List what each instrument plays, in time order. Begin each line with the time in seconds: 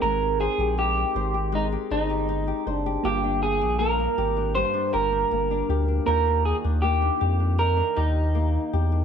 Already playing: synth keys C4 D#4 A#4 G5, nylon-string guitar D#4 G4
0.02 analog synth bass G#1, nylon-string guitar G#3, clean electric guitar A#4
0.22 nylon-string guitar G4
0.40 clean electric guitar G#4, nylon-string guitar C5
0.58 analog synth bass A#1, nylon-string guitar G4
0.78 nylon-string guitar D#4, clean electric guitar G4
0.97 nylon-string guitar G4
1.15 analog synth bass G#1, nylon-string guitar C5
1.34 nylon-string guitar G4
1.52 nylon-string guitar G#3, clean electric guitar D#4
1.72 nylon-string guitar G4
1.91 analog synth bass G1, clean electric guitar D#4, nylon-string guitar C5
2.10 nylon-string guitar G4
2.29 nylon-string guitar D#4
2.47 nylon-string guitar G4
2.67 analog synth bass F#1, clean electric guitar D4, nylon-string guitar C5
2.86 nylon-string guitar G4
3.03 analog synth bass G1, nylon-string guitar G2, synth keys A#3 D4 F4, clean electric guitar G4
3.08 synth keys G5
3.24 nylon-string guitar D4
3.43 clean electric guitar G#4
3.61 analog synth bass A#1, nylon-string guitar D4
3.79 nylon-string guitar A#3, clean electric guitar A#4
3.99 nylon-string guitar D4
4.18 analog synth bass G#1, nylon-string guitar G4
4.36 nylon-string guitar D4
4.55 nylon-string guitar G2, clean electric guitar C5
4.74 nylon-string guitar D4
4.93 analog synth bass G1, nylon-string guitar G4, clean electric guitar A#4
5.12 nylon-string guitar D4
5.31 analog synth bass G1, nylon-string guitar A#3
5.51 nylon-string guitar D4
5.69 analog synth bass D2, nylon-string guitar G4
5.88 nylon-string guitar D4
6.05 analog synth bass D#2, nylon-string guitar D#3, synth keys A#3 F4 D5, clean electric guitar A#4
6.10 synth keys G5
6.27 nylon-string guitar D4
6.45 clean electric guitar G#4
6.64 analog synth bass D#2, nylon-string guitar D4
6.82 nylon-string guitar A#3, clean electric guitar G4
7.02 nylon-string guitar D4
7.21 analog synth bass F2, nylon-string guitar G4
7.40 nylon-string guitar D4
7.58 nylon-string guitar D#3, clean electric guitar A#4
7.77 nylon-string guitar D4
7.96 analog synth bass D#2, clean electric guitar D#4, nylon-string guitar G4
8.35 nylon-string guitar A#3
8.73 analog synth bass E2, nylon-string guitar G4
8.92 nylon-string guitar D4